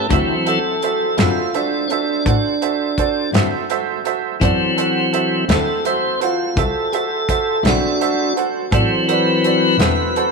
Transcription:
0.09 double bass D2, clean electric guitar D3 F#3 C4 E4, tonewheel organ E3 F#3 C4, upright piano F#4 A4 C5 E5, kick, closed hi-hat
0.45 upright piano F#4 A4 C5 E5, tonewheel organ A4, closed hi-hat
0.82 upright piano F#4 A4 C5 E5, closed hi-hat
1.17 double bass F#2, clean electric guitar D3 F#3 C4 E4, tonewheel organ F4, upright piano F#4 A4 C5 E5, snare, closed hi-hat
1.54 tonewheel organ D4, upright piano F#4 A4 C5 E5, closed hi-hat
1.88 tonewheel organ C#4, upright piano F#4 A4 C5 E5, closed hi-hat
1.93 tonewheel organ D4
2.26 double bass A2, upright piano F#4 A4 C5 F#5, kick, closed hi-hat
2.61 upright piano F#4 A4 C5 E5, closed hi-hat
2.98 upright piano F#4 A4 C5 D5, kick, closed hi-hat
3.33 double bass G2, clean electric guitar D3 F#3 C4 E4, upright piano F#4 A4 C5 E5, snare, closed hi-hat
3.69 upright piano F#4 A4 C5 E5, closed hi-hat
4.04 upright piano F#4 A4 C5 E5, closed hi-hat
4.40 double bass F#2, tonewheel organ E3 F#3 C4, upright piano F#4 A4 C5 D5, kick, closed hi-hat
4.77 upright piano F#4 A4 C5 F#5, closed hi-hat
5.12 upright piano F#4 A4 C5 E5, closed hi-hat
5.49 double bass D2, clean electric guitar D3 F#3 C4 E4, upright piano F#4 A4 C5 E5, tonewheel organ A4, snare, closed hi-hat
5.85 upright piano F#4 A4 C5 E5, tonewheel organ C5, closed hi-hat
6.21 upright piano F#4 A4 C5 F#5, closed hi-hat
6.25 tonewheel organ F4
6.57 double bass C2, upright piano F#4 A4 C5 E5, tonewheel organ A4, kick, closed hi-hat
6.92 upright piano F#4 A4 C5 E5, tonewheel organ G#4 A4, closed hi-hat
7.28 upright piano F#4 A4 C5 E5, kick, closed hi-hat
7.63 double bass B1, clean electric guitar D3 F#3 C4 E4, tonewheel organ D4, upright piano F#4 A4 C5 E5, snare, closed hi-hat
7.69 tonewheel organ F#4
8.00 upright piano F#4 A4 C5 E5, closed hi-hat
8.36 upright piano F#4 A4 C5 F#5, closed hi-hat
8.71 double bass A1, tonewheel organ E3 F#3, upright piano F#4 A4 C5 D5, kick, closed hi-hat
8.75 tonewheel organ C4
9.08 upright piano F#4 A4 C5 D5, tonewheel organ A#4, closed hi-hat
9.14 tonewheel organ B4
9.44 upright piano F#4 A4 C5 D5, closed hi-hat
9.79 double bass E1, clean electric guitar D3 F#3 C4 E4, upright piano F#4 A4 C5 E5, snare, closed hi-hat
10.16 upright piano F#4 A4 C5 F#5, closed hi-hat

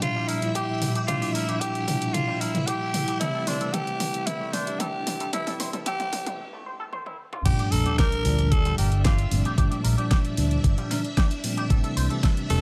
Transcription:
Already playing: tine electric piano A#2 F3 G3 D4, string machine E4 E5
0.02 tenor saxophone F4, kick, closed hi-hat, mid tom
0.16 clean electric guitar G3
0.28 tenor saxophone E4, clean electric guitar A#4, open hi-hat
0.41 tine electric piano A#2 F3 G3 E4, closed hi-hat
0.55 tenor saxophone G4, clean electric guitar G4, kick, closed hi-hat
0.82 open hi-hat, mid tom
0.95 clean electric guitar G4, closed hi-hat
1.07 tine electric piano A#2 F3 G3 A3 D4, tenor saxophone F4, clean electric guitar G4, kick, closed hi-hat, mid tom
1.22 clean electric guitar G4, open hi-hat
1.34 tenor saxophone E4, clean electric guitar A#4, open hi-hat
1.48 tine electric piano A#2 F3 G3 D4, clean electric guitar G4, closed hi-hat
1.60 tenor saxophone G4, clean electric guitar G4, kick, closed hi-hat
1.75 closed hi-hat
1.87 tine electric piano A#2 F3 G3 D4, kick, open hi-hat, mid tom
2.02 closed hi-hat
2.13 tenor saxophone F4, kick, closed hi-hat, mid tom
2.28 clean electric guitar G3
2.40 tenor saxophone E4, clean electric guitar A#4, open hi-hat
2.54 tine electric piano A#2 F3 G3 E4, closed hi-hat, mid tom
2.67 tenor saxophone G4, clean electric guitar G4, kick, closed hi-hat
2.94 open hi-hat, mid tom
3.08 clean electric guitar G4, closed hi-hat
3.20 tine electric piano C3 E3 G3 A3 C4, tenor saxophone E4, clean electric guitar A4, kick, closed hi-hat, mid tom
3.34 clean electric guitar A4
3.47 tenor saxophone D4, clean electric guitar C5, open hi-hat, mid tom
3.60 tine electric piano C3 E3 G3 A3 C4, clean electric guitar A4, closed hi-hat
3.73 tenor saxophone G4, clean electric guitar A4, kick, closed hi-hat, mid tom
3.87 closed hi-hat
3.99 tine electric piano C3 E3 G3 A3 C4, kick, open hi-hat, mid tom
4.14 closed hi-hat
4.27 tenor saxophone E4, kick, closed hi-hat, mid tom
4.40 clean electric guitar A3
4.53 tenor saxophone D4, clean electric guitar C5, open hi-hat, mid tom
4.66 tine electric piano C3 E3 G3 A3 D4, closed hi-hat
4.80 tenor saxophone G4, clean electric guitar A4, kick, closed hi-hat, mid tom
5.07 open hi-hat, mid tom
5.20 clean electric guitar A4, closed hi-hat
5.32 tine electric piano C3 E3 G3 A3 C4, tenor saxophone E4, clean electric guitar A4, kick, closed hi-hat, mid tom
5.47 clean electric guitar A4, open hi-hat, mid tom
5.60 clean electric guitar C5, open hi-hat, mid tom
5.73 tine electric piano C3 E3 G3 A3 C4, clean electric guitar A4, closed hi-hat, mid tom
5.86 tenor saxophone G4, clean electric guitar A4, kick, closed hi-hat, mid tom
6.00 closed hi-hat, mid tom
6.12 tine electric piano C3 E3 G3 A3 C4, kick, open hi-hat, mid tom
6.26 closed hi-hat, mid tom
6.53 clean electric guitar A3
6.66 clean electric guitar C5
6.80 clean electric guitar A4
6.93 clean electric guitar C5, high tom
7.06 clean electric guitar E4, high tom
7.33 clean electric guitar F4, mid tom
7.45 fingered electric bass G1, tine electric piano A#2 F3 G3 A3 D4, string machine D4 E5, tenor saxophone G4, clean electric guitar G4, kick, closed hi-hat, crash, sub drop
7.59 clean electric guitar G4, closed hi-hat
7.71 fingered electric bass A#1, tenor saxophone A4, clean electric guitar A#4, open hi-hat
7.86 tine electric piano A#2 F3 G3 D4, clean electric guitar G4, closed hi-hat
7.98 clean electric guitar G4, tenor saxophone A#4, kick, snare, closed hi-hat
8.12 closed hi-hat
8.24 fingered electric bass D2, tine electric piano A#2 F3 G3 D4, open hi-hat
8.39 closed hi-hat
8.51 tenor saxophone A4, kick, closed hi-hat
8.65 clean electric guitar G3, closed hi-hat
8.78 fingered electric bass G1, tenor saxophone G4, clean electric guitar A#4, open hi-hat
8.92 closed hi-hat
9.04 tenor saxophone F4, clean electric guitar G4, kick, snare, closed hi-hat
9.18 closed hi-hat
9.31 fingered electric bass G1, tine electric piano A#2 F3 G3 A3 C4, open hi-hat
9.45 clean electric guitar G4, closed hi-hat
9.57 fingered electric bass G1, tine electric piano A#2 F3 G3 A3 D4, clean electric guitar G4, kick, closed hi-hat
9.71 clean electric guitar G4, closed hi-hat
9.84 fingered electric bass A#1, clean electric guitar A#4, open hi-hat
9.98 tine electric piano A#2 F3 G3 D4, clean electric guitar G4, closed hi-hat
10.11 clean electric guitar G4, kick, snare, closed hi-hat
10.25 closed hi-hat
10.37 fingered electric bass D2, tine electric piano A#2 F3 G3 D4, open hi-hat
10.51 closed hi-hat
10.64 fingered electric bass G1, kick, closed hi-hat
10.78 clean electric guitar G3, closed hi-hat
10.91 clean electric guitar A#4, snare, open hi-hat
11.05 closed hi-hat
11.17 clean electric guitar G4, kick, snare, closed hi-hat
11.31 closed hi-hat
11.44 tine electric piano A#2 F3 G3 A3 C4, open hi-hat
11.57 clean electric guitar G4, closed hi-hat
11.70 fingered electric bass A1, tine electric piano C3 E3 G3 A3 C4, clean electric guitar A4, kick, closed hi-hat
11.84 clean electric guitar A4, closed hi-hat
11.97 fingered electric bass C2, clean electric guitar C5, open hi-hat
12.10 tine electric piano C3 E3 G3 A3 C4, clean electric guitar A4, closed hi-hat
12.23 clean electric guitar A4, kick, snare, closed hi-hat
12.37 closed hi-hat
12.49 fingered electric bass E1, tine electric piano C3 E3 G3 A3 C4, tenor saxophone A4, open hi-hat

